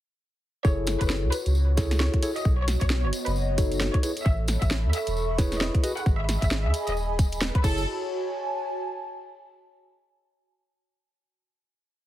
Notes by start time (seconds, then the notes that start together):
0.65 F#1 E4 F#4 G#4 A4 C#5, kick, tambourine
0.75 C#5
0.87 snare, open hi-hat, tambourine
1.01 F#1 B4, kick, closed hi-hat, tambourine
1.10 snare
1.23 C#2
1.32 B4, open hi-hat, tambourine
1.46 C#2, closed hi-hat, tambourine
1.55 tambourine
1.77 E4 G#4 A4 C#5, kick, snare, open hi-hat, tambourine
1.91 snare, closed hi-hat, tambourine
2.00 C#5, snare, tambourine
2.14 kick, closed hi-hat
2.23 E4 G#4 A4 C#5, open hi-hat, tambourine
2.36 D#5, closed hi-hat, tambourine
2.45 B1 B3, kick, tambourine
2.59 C#5
2.68 snare, open hi-hat, tambourine
2.81 B1 C#5, kick, closed hi-hat, tambourine
2.90 D#5, snare, tambourine
3.04 F#1 C#5
3.13 open hi-hat, tambourine
3.26 F#1 B4, closed hi-hat, tambourine
3.36 tambourine
3.58 D#4 F#4 A4 C#5, kick, open hi-hat, tambourine
3.71 closed hi-hat, tambourine
3.80 snare, tambourine
3.94 C#5, kick, closed hi-hat
4.03 E4 G#4 A4 B4 C#5, open hi-hat, tambourine
4.17 closed hi-hat, tambourine
4.26 A1 E5, kick
4.30 E5
4.35 B5
4.48 snare, open hi-hat, tambourine
4.62 A1 E5, kick, closed hi-hat, tambourine
4.71 snare
4.79 C#6
4.84 E2
4.93 E5, open hi-hat, tambourine
5.07 E1, closed hi-hat, tambourine
5.17 tambourine
5.38 E4 G#4 B4 C#5, kick, snare, open hi-hat, tambourine
5.52 snare, closed hi-hat, tambourine
5.61 D#5, snare
5.75 kick, closed hi-hat
5.83 F#4 G#4 B4 D#5, open hi-hat, tambourine
5.93 D#5 F#5, closed hi-hat, tambourine
6.06 G#1, kick, tambourine
6.20 E5 G#5
6.29 snare, open hi-hat, tambourine
6.42 G#1 E5, kick, closed hi-hat, tambourine
6.51 snare
6.65 D#2 E5
6.74 open hi-hat, tambourine
6.87 D#1 D#5, closed hi-hat, tambourine
6.97 tambourine
7.19 kick, open hi-hat, tambourine
7.32 closed hi-hat, tambourine
7.42 snare, tambourine
7.55 B4, kick, closed hi-hat
7.64 F#1 E4 F#4 G#4 A4 C#5, kick, crash, tambourine
7.72 C#5
7.78 tambourine
8.02 G#5
8.07 A5